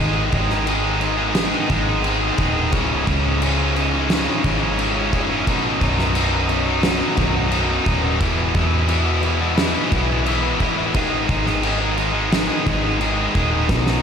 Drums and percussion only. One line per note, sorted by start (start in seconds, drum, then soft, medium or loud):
0.32 kick medium
0.32 crash medium
0.50 snare soft
0.67 crash medium
1.01 crash medium
1.35 snare loud
1.35 crash medium
1.69 kick medium
1.69 crash medium
2.04 crash medium
2.38 kick medium
2.38 crash medium
2.72 kick loud
2.72 crash medium
3.07 kick medium
3.07 crash medium
3.42 crash medium
3.76 crash medium
4.10 snare loud
4.10 crash loud
4.44 kick medium
4.44 crash medium
4.79 crash medium
5.13 kick medium
5.13 crash medium
5.47 kick loud
5.47 crash medium
5.81 kick medium
5.81 crash medium
5.99 snare soft
6.15 crash medium
6.49 crash medium
6.83 snare loud
6.83 crash medium
7.17 kick medium
7.17 crash medium
7.52 crash medium
7.86 kick medium
7.86 crash medium
8.21 kick loud
8.21 crash medium
8.54 kick medium
8.54 crash medium
8.89 crash medium
9.23 crash medium
9.57 snare loud
9.57 crash medium
9.92 kick medium
9.92 crash medium
10.26 crash medium
10.60 kick medium
10.60 crash medium
10.94 kick loud
10.94 crash medium
11.29 kick medium
11.29 crash medium
11.46 snare soft
11.63 crash medium
11.98 crash medium
12.32 snare loud
12.32 crash medium
12.67 kick medium
12.67 crash medium
13.01 crash medium
13.35 kick medium
13.35 crash medium
13.69 kick loud
13.69 snare medium
13.86 snare medium